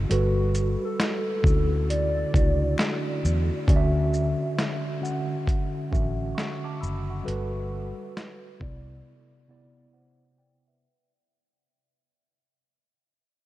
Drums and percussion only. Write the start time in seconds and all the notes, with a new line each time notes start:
0.11 closed hi-hat
0.55 closed hi-hat, shaker
1.00 finger snap, snare, closed hi-hat
1.44 kick, shaker
1.90 closed hi-hat
2.34 kick, closed hi-hat, shaker
2.78 finger snap, snare, closed hi-hat
3.25 shaker
3.68 kick, closed hi-hat
4.14 shaker
4.59 snare, closed hi-hat
5.05 shaker
5.47 kick, closed hi-hat
5.93 kick, shaker
6.38 snare, closed hi-hat
6.83 shaker
7.28 closed hi-hat
8.17 snare, closed hi-hat
8.61 kick